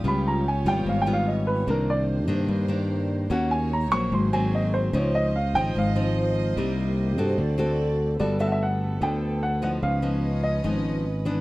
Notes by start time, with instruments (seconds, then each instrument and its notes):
Already playing: string section F4 G4
0.04 fingered electric bass C#2, nylon-string guitar C#3 G3 B3 F4, string section B3 C#5, grand piano B5
0.28 grand piano A#5
0.48 grand piano G#5
0.65 fingered electric bass G#1, nylon-string guitar G3 B3 F4, grand piano G5
0.85 fingered electric bass G#1, nylon-string guitar G#2, grand piano F5
1.02 grand piano G5
1.06 nylon-string guitar G3 B3 F4
1.13 grand piano F5
1.28 grand piano D#5
1.47 grand piano B4
1.67 fingered electric bass C2, nylon-string guitar C3 D#3 A#3 D4, string section A#3 D4 C5, grand piano A#4
1.90 grand piano D5
2.28 fingered electric bass G2, nylon-string guitar D#3 A#3 D4
2.48 fingered electric bass G2, nylon-string guitar G2
2.68 nylon-string guitar D#3 A#3 D4
3.30 fingered electric bass D#2, nylon-string guitar D#3 A#3 C#4 F#4, string section D#4 F#4 C#5, grand piano F#5
3.51 grand piano G#5
3.73 grand piano A#5
3.91 fingered electric bass A#1, nylon-string guitar F#3 A#3 C4, grand piano C#6
4.12 fingered electric bass G#1, nylon-string guitar G#2, string section F#4 G#4 C5, grand piano C6
4.33 nylon-string guitar F#3 A#3 C4, grand piano G#5
4.55 grand piano D#5
4.74 grand piano C5
4.93 fingered electric bass C#2, nylon-string guitar C#3 F3 C4 D#4, string section F4 C5 D#5, grand piano C#5
5.15 grand piano D#5
5.36 grand piano F5
5.54 fingered electric bass G#1, nylon-string guitar F3 C4 D#4, grand piano G5
5.75 fingered electric bass G#1, nylon-string guitar G#2, grand piano F5
5.96 nylon-string guitar F3 C4 D#4
6.57 fingered electric bass C2, nylon-string guitar C3 G3 A#3 D#4, string section A#3 G4
7.18 fingered electric bass G2, nylon-string guitar C4 F#4 A4
7.38 fingered electric bass D2, nylon-string guitar D3, string section A3 F#4 D5
7.58 nylon-string guitar C4 F#4 A4
8.19 fingered electric bass G1, nylon-string guitar G3 B3 F#4 A4, string section A3 A4 B4, grand piano D5
8.39 nylon-string guitar B3 F#4 A4, grand piano E5
8.47 grand piano F#5
8.52 grand piano E5
8.63 grand piano F#5
9.01 fingered electric bass D2, nylon-string guitar D3 B3 A4, grand piano G5
9.43 grand piano F#5
9.62 nylon-string guitar F3 B3 D#4, grand piano F#5
9.82 fingered electric bass C#2, nylon-string guitar C#3, string section C#4 F4 D#5, grand piano F5
10.02 nylon-string guitar F3 B3 D#4
10.43 grand piano D#5
10.64 fingered electric bass G#1, nylon-string guitar G#2 F3 B3 D#4
11.25 nylon-string guitar E3 B3 D4